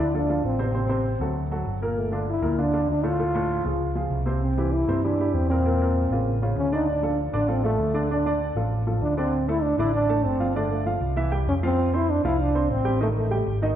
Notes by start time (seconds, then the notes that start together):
Already playing: E4
0.00 D2 D3 D4 D5
0.14 F3 D4 F4 A4
0.29 F3 F4 A4
0.43 A1 C4
0.59 C3 C4 C5
0.74 C3 C4 C5
0.89 C3 C4 C5
1.20 D2 F#3 F#4 A4
1.51 F#3 F#4 A4
1.65 G1
1.82 A#2 A#3 A#4
1.98 A3
2.12 D3 D4 F4
2.29 E4
2.42 D2 A#2 A#3 A#4
2.58 D3 D4 F4
2.73 D3 D4 F4
2.88 D2 D4
3.03 A2 A3 F4 A4
3.19 A2 A3 A4
3.35 A2 A3 A4
3.64 C#2 F3 F4 G#4
3.95 F3 F4 G#4
4.10 C2
4.26 C3 C4 C5
4.43 C4
4.58 E3 E4 G4
4.73 E4
4.88 G2 C3 C4 C5
5.04 E3 D4 E4 G4
5.20 E3 E4 G4
5.34 E2 C4
5.50 A#2 A#3 C4 A#4
5.65 A#2 A#3 A#4
5.81 A#2 A#3 A#4
6.09 A1 C#3 A#3 F4
6.42 C#3 C#4 F4
6.56 D2 C#4
6.72 D3 D4 D#4 D5
6.89 D4
7.03 F3 F4 A4
7.33 A1 D3 D4 D5
7.48 F3 C4 F4 A4
7.63 F3 A3 F4 A4
7.79 D2
7.94 D3 D4 D5
8.11 D3 D4 D5
8.26 D3 D4 D5
8.55 A1 F3 F4 A4
8.87 F3 F4 A4
9.01 D2 D4
9.17 D3 C4 D4 D5
9.48 A3 E4 A4 A5
9.63 D4
9.78 A1 D3 D4 E4 D5
9.94 D4
10.09 A3 A4 A5
10.24 G1 C4
10.40 F3 F4 F5
10.55 D3 A3 D4 D5
10.71 A3
10.86 F3 F4 F5
11.01 C2
11.16 E3 E4 E5
11.32 G3 G4 G5
11.47 F2 C#4
11.63 F3 C4 F4 F5
11.93 C4 E4 C5 C6
12.10 D4
12.24 C2 F3 E4 F4 F5
12.41 D4
12.55 C4 C5 C6
12.70 A1 C4
12.85 G3 G4 G5
13.01 D#3 A3 D#4 D#5
13.18 A3
13.31 G3 G4 G5
13.46 G#1
13.62 D#3 D#4 D#5